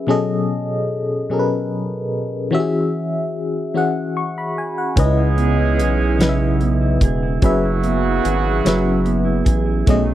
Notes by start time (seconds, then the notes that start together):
Already playing: F#3
0.07 B2 F#3 C#4 G#4 A4 D#5
1.30 B2 F#3 C#4 G#4 A4 A#4
1.39 B4
2.51 E3 C#4 F#4 G4 E5
2.60 G#4
3.74 E3 C#4 F#4 G#4 F#5
4.17 C#6
4.38 B5
4.58 G#5
4.78 F#5
4.96 C#2 C#3 E3 G#3 C#4 D#4 G#4 B4 D#5, kick, closed hi-hat
5.04 E4
5.17 E4
5.37 B3, closed hi-hat
5.57 E4
5.78 B1 G#4, closed hi-hat
5.99 E4
6.19 C#3 C#4 E4 B4 D#5, snare, closed hi-hat
6.29 E5
6.40 E4
6.61 B3, closed hi-hat
6.81 E4
7.01 E1 G#4, kick, closed hi-hat
7.23 E4
7.42 F#1 C#3 F#3 B3 C#4 F#4 G#4 B4 E5, kick, closed hi-hat
7.63 E4
7.83 B3, closed hi-hat
8.04 E4
8.24 G#1 G#4, closed hi-hat
8.44 E4
8.64 F#1 F#3 C#4 G#4 B4, snare, closed hi-hat
8.68 E5
8.84 E4
9.04 B3, closed hi-hat
9.25 E4
9.45 A1 G#4, kick, closed hi-hat
9.66 E4
9.86 B1 B2 D#3 F#3 A3 C#4 D#4 G#4 D#5, kick, closed hi-hat
10.06 D#4